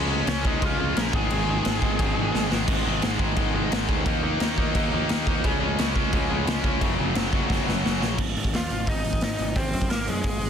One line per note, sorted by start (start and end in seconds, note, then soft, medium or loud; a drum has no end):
0.00 0.21 C#2 medium
0.00 0.43 C#3 medium
0.00 0.11 G#3 loud
0.00 0.46 G#3 medium
0.00 0.11 C#4 loud
0.00 0.43 C#4 medium
0.09 0.27 C#3 medium
0.09 0.27 G#3 loud
0.09 0.26 C#4 medium
0.27 0.55 C#2 loud
0.27 0.42 C#3 loud
0.27 0.44 G#3 medium
0.27 0.43 C#4 loud
0.27 0.44 C#4 medium
0.27 0.47 C#5 medium
0.27 snare loud
0.27 crash medium
0.43 0.61 C#3 medium
0.43 0.62 G#3 loud
0.43 0.60 C#4 loud
0.43 0.62 D#4 medium
0.43 kick loud
0.47 1.14 C#3 medium
0.47 0.65 D#5 medium
0.61 0.76 C#2 loud
0.61 0.77 C#3 medium
0.61 0.79 G#3 medium
0.61 0.78 C#4 medium
0.61 0.95 F4 medium
0.61 0.98 F5 loud
0.61 kick loud
0.61 crash medium
0.78 0.93 C#2 medium
0.78 0.97 C#3 medium
0.78 0.97 G#3 medium
0.78 0.95 C#4 medium
0.96 1.10 A#1 medium
0.96 1.13 C#3 loud
0.96 1.13 G#3 loud
0.96 1.13 C#4 medium
0.96 1.13 A#4 medium
0.96 1.14 A#5 loud
0.96 snare loud
0.96 crash medium
1.13 1.27 G#1 medium
1.13 1.31 G#2 loud
1.13 1.30 D#3 medium
1.13 1.30 G#3 loud
1.13 2.48 G#4 medium
1.13 2.49 G#5 loud
1.13 kick loud
1.30 1.59 G#1 loud
1.30 1.47 G#2 medium
1.30 1.47 D#3 medium
1.30 1.47 G#3 loud
1.30 crash medium
1.48 1.65 G#2 medium
1.48 1.64 D#3 loud
1.48 1.63 G#3 medium
1.65 1.79 G#1 loud
1.65 1.80 G#2 medium
1.65 1.81 D#3 loud
1.65 1.82 G#3 loud
1.65 snare loud
1.65 crash medium
1.81 1.96 G#1 medium
1.81 1.99 G#2 medium
1.81 1.98 D#3 medium
1.81 1.97 G#3 loud
1.81 kick medium
1.98 2.14 G#1 medium
1.98 2.14 G#2 medium
1.98 2.15 D#3 loud
1.98 2.15 G#3 loud
1.98 kick loud
1.98 crash medium
2.15 2.31 G#1 medium
2.15 2.32 G#2 medium
2.15 2.32 D#3 medium
2.15 2.31 G#3 medium
2.32 2.48 G#1 loud
2.32 2.48 G#2 loud
2.32 2.49 D#3 loud
2.32 2.50 G#3 loud
2.32 snare medium
2.49 2.65 G#1 medium
2.49 2.65 G#2 medium
2.49 2.66 D#3 loud
2.49 2.67 G#3 medium
2.49 snare loud
2.67 2.83 G#1 medium
2.67 2.84 G#2 medium
2.67 2.84 D#3 medium
2.67 2.84 G#3 loud
2.67 kick loud
2.67 crash loud
2.67 crash medium
2.85 3.00 G#1 medium
2.85 3.00 G#2 medium
2.85 3.01 D#3 medium
2.85 3.02 G#3 loud
3.02 3.18 G#1 medium
3.02 3.20 G#2 loud
3.02 3.19 D#3 loud
3.02 3.19 G#3 loud
3.02 snare loud
3.02 crash medium
3.19 3.34 G#1 medium
3.19 3.35 G#2 medium
3.19 3.36 D#3 medium
3.19 3.37 G#3 medium
3.19 kick medium
3.36 3.52 G#1 loud
3.36 3.55 G#2 loud
3.36 3.54 D#3 loud
3.36 3.53 G#3 loud
3.36 kick loud
3.36 crash medium
3.54 3.69 G#1 medium
3.54 3.71 G#2 medium
3.54 3.72 D#3 medium
3.54 3.73 G#3 medium
3.72 3.86 G#1 loud
3.72 3.89 G#2 loud
3.72 3.88 D#3 loud
3.72 3.87 G#3 loud
3.72 snare loud
3.72 crash medium
3.89 4.04 D2 medium
3.89 4.06 G#2 medium
3.89 4.05 D#3 medium
3.89 4.05 G#3 loud
3.89 kick medium
4.06 4.21 D#2 medium
4.06 4.23 D#3 medium
4.06 4.22 A#3 medium
4.06 4.22 D#4 medium
4.06 kick loud
4.06 crash medium
4.23 4.38 D#2 loud
4.23 4.39 D#3 medium
4.23 4.40 A#3 medium
4.23 4.40 D#4 medium
4.40 4.55 D#2 loud
4.40 4.59 D#3 loud
4.40 4.58 A#3 loud
4.40 4.57 D#4 loud
4.40 snare loud
4.40 crash medium
4.58 4.73 D#2 medium
4.58 4.74 D#3 medium
4.58 4.74 A#3 medium
4.58 4.75 D#4 loud
4.58 kick medium
4.75 4.90 D#2 medium
4.75 4.93 D#3 medium
4.75 4.92 A#3 loud
4.75 4.92 D#4 loud
4.75 kick loud
4.75 crash medium
4.93 5.07 D#2 medium
4.93 5.09 D#3 medium
4.93 5.09 A#3 medium
4.93 5.10 D#4 medium
5.09 5.25 D#2 loud
5.09 5.27 D#3 loud
5.09 5.27 A#3 medium
5.09 5.26 D#4 loud
5.09 snare loud
5.09 crash medium
5.27 5.41 D#2 medium
5.27 5.44 D#3 medium
5.27 5.44 A#3 medium
5.27 5.43 D#4 medium
5.27 kick medium
5.44 5.59 C#2 medium
5.44 5.60 C#3 loud
5.44 5.60 G#3 loud
5.44 5.60 C#4 loud
5.44 kick loud
5.44 crash medium
5.60 5.76 C#2 loud
5.60 5.77 C#3 medium
5.60 5.78 G#3 medium
5.60 5.79 C#4 loud
5.78 5.93 C#2 loud
5.78 5.96 C#3 loud
5.78 5.96 G#3 loud
5.78 5.96 C#4 loud
5.78 snare loud
5.78 crash medium
5.96 6.10 C#2 medium
5.96 6.12 C#3 medium
5.96 6.12 G#3 medium
5.96 6.13 C#4 loud
5.96 kick medium
6.13 6.27 C#2 loud
6.13 6.29 C#3 loud
6.13 6.29 G#3 loud
6.13 6.28 C#4 loud
6.13 kick loud
6.13 crash medium
6.29 6.45 C#2 loud
6.29 6.45 C#3 medium
6.29 6.46 G#3 medium
6.29 6.45 C#4 loud
6.46 6.62 C#2 loud
6.46 6.64 C#3 loud
6.46 6.63 G#3 loud
6.46 6.62 C#4 loud
6.46 snare loud
6.46 crash medium
6.63 6.79 C#2 medium
6.63 6.81 C#3 medium
6.63 6.80 G#3 medium
6.63 6.80 C#4 loud
6.63 kick loud
6.81 6.96 F#1 medium
6.81 6.99 F#2 loud
6.81 6.98 C#3 loud
6.81 6.98 F#3 loud
6.81 kick loud
6.81 crash medium
6.99 7.13 F#1 loud
6.99 7.14 F#2 medium
6.99 7.14 C#3 medium
6.99 7.15 F#3 loud
7.15 7.30 F#1 medium
7.15 7.32 F#2 loud
7.15 7.32 C#3 loud
7.15 7.31 F#3 loud
7.15 snare loud
7.15 crash medium
7.32 7.47 F#1 medium
7.32 7.49 F#2 medium
7.32 7.49 C#3 medium
7.32 7.50 F#3 loud
7.32 kick medium
7.50 7.64 F#1 medium
7.50 7.67 F#2 loud
7.50 7.67 C#3 medium
7.50 7.66 F#3 loud
7.50 kick loud
7.50 snare medium
7.67 7.82 F#1 medium
7.67 7.83 F#2 medium
7.67 7.83 C#3 medium
7.67 7.83 F#3 medium
7.67 snare medium
7.84 7.99 F#1 loud
7.84 8.00 F#2 medium
7.84 8.00 C#3 loud
7.84 7.99 F#3 loud
7.84 snare loud
8.00 8.16 A#1 medium
8.00 8.17 F#2 medium
8.00 8.17 C#3 medium
8.00 8.17 F#3 medium
8.00 snare loud
8.18 8.35 G#1 medium
8.18 kick loud
8.18 crash medium
8.36 8.52 G#1 medium
8.36 open hi-hat medium
8.44 kick medium
8.53 8.69 D#2 medium
8.53 8.86 F4 medium
8.53 8.88 F5 medium
8.53 snare loud
8.53 open hi-hat medium
8.70 8.87 G#1 medium
8.70 open hi-hat soft
8.87 9.03 G#1 medium
8.87 9.20 D#4 medium
8.87 9.20 D#5 medium
8.87 kick loud
8.87 open hi-hat medium
9.04 9.21 G#1 medium
9.04 open hi-hat medium
9.13 kick medium
9.21 9.38 G#1 medium
9.21 9.55 D#4 medium
9.21 9.58 D#5 medium
9.21 snare loud
9.21 open hi-hat medium
9.39 9.55 G#1 medium
9.39 open hi-hat medium
9.56 9.72 G#1 medium
9.56 9.88 C4 medium
9.56 9.90 C5 medium
9.56 kick medium
9.56 open hi-hat medium
9.73 9.90 F#2 medium
9.73 open hi-hat medium
9.82 kick medium
9.90 10.07 G#1 medium
9.90 10.06 A#3 medium
9.90 10.09 A#4 medium
9.90 snare loud
9.90 open hi-hat medium
10.08 10.24 F#2 medium
10.08 10.50 G#3 medium
10.08 10.50 G#4 medium
10.08 open hi-hat medium
10.24 10.41 G#1 medium
10.24 kick medium
10.24 open hi-hat medium
10.41 10.50 G#1 medium
10.41 open hi-hat medium